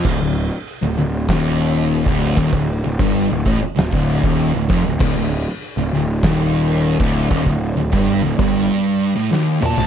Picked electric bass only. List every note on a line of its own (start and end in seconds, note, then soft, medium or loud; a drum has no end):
0.05 0.19 D1 medium
0.21 0.49 D1 medium
0.83 0.97 D1 medium
0.97 1.26 D1 medium
1.29 2.02 D#1 medium
2.07 2.35 D1 medium
2.37 2.51 D#1 loud
2.53 2.81 D1 medium
2.86 2.99 D1 medium
2.99 3.28 G1 medium
3.31 3.45 D1 medium
3.46 3.60 A1 medium
3.63 muted picked electric bass stroke soft
3.78 3.92 D1 medium
3.93 4.21 D1 loud
4.24 4.52 D#1 loud
4.55 4.68 D1 medium
4.70 4.84 F1 loud
4.86 5.00 D1 medium
5.00 5.14 D1 loud
5.17 5.45 D1 medium
5.77 5.91 D1 medium
5.93 6.22 D1 medium
6.23 6.97 D#1 medium
6.99 7.29 D1 medium
7.31 7.45 D#1 loud
7.46 7.75 D1 medium
7.77 7.92 D1 medium
7.93 8.22 G1 medium
8.24 8.38 D1 medium
8.39 8.68 G1 loud